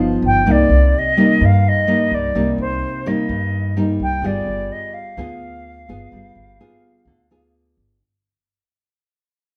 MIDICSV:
0, 0, Header, 1, 4, 480
1, 0, Start_track
1, 0, Key_signature, -3, "minor"
1, 0, Tempo, 471698
1, 467, Time_signature, 4, 2, 24, 8
1, 9729, End_track
2, 0, Start_track
2, 0, Title_t, "Flute"
2, 0, Program_c, 0, 73
2, 267, Note_on_c, 0, 79, 84
2, 518, Note_on_c, 0, 74, 88
2, 534, Note_off_c, 0, 79, 0
2, 1001, Note_on_c, 0, 75, 81
2, 1016, Note_off_c, 0, 74, 0
2, 1478, Note_on_c, 0, 77, 87
2, 1494, Note_off_c, 0, 75, 0
2, 1712, Note_on_c, 0, 75, 91
2, 1727, Note_off_c, 0, 77, 0
2, 2180, Note_on_c, 0, 74, 81
2, 2195, Note_off_c, 0, 75, 0
2, 2642, Note_off_c, 0, 74, 0
2, 2654, Note_on_c, 0, 72, 80
2, 3126, Note_on_c, 0, 75, 72
2, 3141, Note_off_c, 0, 72, 0
2, 3834, Note_off_c, 0, 75, 0
2, 4098, Note_on_c, 0, 79, 84
2, 4333, Note_on_c, 0, 74, 84
2, 4348, Note_off_c, 0, 79, 0
2, 4801, Note_on_c, 0, 75, 75
2, 4816, Note_off_c, 0, 74, 0
2, 5023, Note_on_c, 0, 77, 77
2, 5038, Note_off_c, 0, 75, 0
2, 7667, Note_off_c, 0, 77, 0
2, 9729, End_track
3, 0, Start_track
3, 0, Title_t, "Nylon-string guitar"
3, 0, Program_c, 1, 24
3, 0, Note_on_c, 1, 43, 50
3, 0, Note_on_c, 1, 53, 61
3, 0, Note_on_c, 1, 59, 60
3, 0, Note_on_c, 1, 63, 61
3, 428, Note_off_c, 1, 53, 0
3, 430, Note_off_c, 1, 59, 0
3, 432, Note_off_c, 1, 63, 0
3, 440, Note_off_c, 1, 43, 0
3, 473, Note_on_c, 1, 48, 49
3, 476, Note_on_c, 1, 55, 50
3, 478, Note_on_c, 1, 58, 45
3, 483, Note_on_c, 1, 63, 50
3, 947, Note_off_c, 1, 58, 0
3, 948, Note_off_c, 1, 55, 0
3, 951, Note_off_c, 1, 63, 0
3, 1192, Note_on_c, 1, 55, 56
3, 1197, Note_on_c, 1, 58, 60
3, 1204, Note_on_c, 1, 63, 60
3, 1405, Note_off_c, 1, 48, 0
3, 1434, Note_on_c, 1, 43, 51
3, 1869, Note_off_c, 1, 55, 0
3, 1872, Note_off_c, 1, 58, 0
3, 1876, Note_off_c, 1, 63, 0
3, 1906, Note_on_c, 1, 55, 52
3, 1912, Note_on_c, 1, 58, 51
3, 1916, Note_on_c, 1, 63, 53
3, 2346, Note_off_c, 1, 55, 0
3, 2350, Note_off_c, 1, 58, 0
3, 2350, Note_off_c, 1, 63, 0
3, 2364, Note_off_c, 1, 43, 0
3, 2393, Note_on_c, 1, 55, 42
3, 2394, Note_on_c, 1, 48, 51
3, 2398, Note_on_c, 1, 58, 48
3, 2403, Note_on_c, 1, 63, 56
3, 3069, Note_off_c, 1, 55, 0
3, 3072, Note_off_c, 1, 58, 0
3, 3074, Note_off_c, 1, 63, 0
3, 3114, Note_on_c, 1, 55, 53
3, 3118, Note_on_c, 1, 58, 55
3, 3125, Note_on_c, 1, 63, 65
3, 3325, Note_off_c, 1, 48, 0
3, 3353, Note_on_c, 1, 43, 51
3, 3790, Note_off_c, 1, 55, 0
3, 3793, Note_off_c, 1, 58, 0
3, 3794, Note_off_c, 1, 63, 0
3, 3832, Note_on_c, 1, 55, 48
3, 3837, Note_on_c, 1, 58, 49
3, 3843, Note_on_c, 1, 63, 54
3, 4269, Note_off_c, 1, 55, 0
3, 4272, Note_off_c, 1, 58, 0
3, 4275, Note_off_c, 1, 63, 0
3, 4284, Note_off_c, 1, 43, 0
3, 4309, Note_on_c, 1, 55, 50
3, 4312, Note_on_c, 1, 59, 48
3, 4316, Note_on_c, 1, 65, 46
3, 4319, Note_on_c, 1, 68, 51
3, 5229, Note_off_c, 1, 59, 0
3, 5232, Note_off_c, 1, 65, 0
3, 5232, Note_off_c, 1, 68, 0
3, 5243, Note_off_c, 1, 55, 0
3, 5266, Note_on_c, 1, 50, 49
3, 5268, Note_on_c, 1, 59, 54
3, 5275, Note_on_c, 1, 65, 49
3, 5280, Note_on_c, 1, 68, 54
3, 5947, Note_off_c, 1, 59, 0
3, 5952, Note_off_c, 1, 65, 0
3, 5954, Note_off_c, 1, 68, 0
3, 5994, Note_on_c, 1, 59, 55
3, 5999, Note_on_c, 1, 65, 57
3, 5999, Note_on_c, 1, 68, 61
3, 6202, Note_off_c, 1, 50, 0
3, 6236, Note_on_c, 1, 55, 46
3, 6672, Note_off_c, 1, 59, 0
3, 6674, Note_off_c, 1, 65, 0
3, 6674, Note_off_c, 1, 68, 0
3, 6718, Note_on_c, 1, 59, 42
3, 6722, Note_on_c, 1, 68, 58
3, 6723, Note_on_c, 1, 65, 45
3, 7168, Note_off_c, 1, 55, 0
3, 7197, Note_on_c, 1, 50, 51
3, 7395, Note_off_c, 1, 59, 0
3, 7395, Note_off_c, 1, 65, 0
3, 7397, Note_off_c, 1, 68, 0
3, 7435, Note_on_c, 1, 59, 51
3, 7441, Note_on_c, 1, 65, 48
3, 7448, Note_on_c, 1, 68, 57
3, 8115, Note_off_c, 1, 59, 0
3, 8116, Note_off_c, 1, 65, 0
3, 8120, Note_off_c, 1, 68, 0
3, 8130, Note_off_c, 1, 50, 0
3, 9729, End_track
4, 0, Start_track
4, 0, Title_t, "Upright bass"
4, 0, Program_c, 2, 32
4, 0, Note_on_c, 2, 31, 76
4, 182, Note_off_c, 2, 31, 0
4, 228, Note_on_c, 2, 31, 83
4, 451, Note_off_c, 2, 31, 0
4, 470, Note_on_c, 2, 36, 80
4, 691, Note_off_c, 2, 36, 0
4, 707, Note_on_c, 2, 36, 77
4, 930, Note_off_c, 2, 36, 0
4, 1435, Note_on_c, 2, 43, 80
4, 2108, Note_off_c, 2, 43, 0
4, 2152, Note_on_c, 2, 36, 71
4, 2372, Note_off_c, 2, 36, 0
4, 2393, Note_on_c, 2, 36, 82
4, 2612, Note_off_c, 2, 36, 0
4, 2628, Note_on_c, 2, 36, 78
4, 2849, Note_off_c, 2, 36, 0
4, 3349, Note_on_c, 2, 43, 85
4, 4025, Note_off_c, 2, 43, 0
4, 4069, Note_on_c, 2, 36, 79
4, 4290, Note_off_c, 2, 36, 0
4, 4296, Note_on_c, 2, 31, 82
4, 4522, Note_off_c, 2, 31, 0
4, 4541, Note_on_c, 2, 31, 69
4, 4765, Note_off_c, 2, 31, 0
4, 5263, Note_on_c, 2, 38, 79
4, 5943, Note_off_c, 2, 38, 0
4, 5990, Note_on_c, 2, 31, 75
4, 6211, Note_off_c, 2, 31, 0
4, 6227, Note_on_c, 2, 31, 78
4, 6450, Note_off_c, 2, 31, 0
4, 6465, Note_on_c, 2, 31, 71
4, 6689, Note_off_c, 2, 31, 0
4, 7179, Note_on_c, 2, 38, 77
4, 7864, Note_off_c, 2, 38, 0
4, 7910, Note_on_c, 2, 31, 69
4, 8133, Note_off_c, 2, 31, 0
4, 9729, End_track
0, 0, End_of_file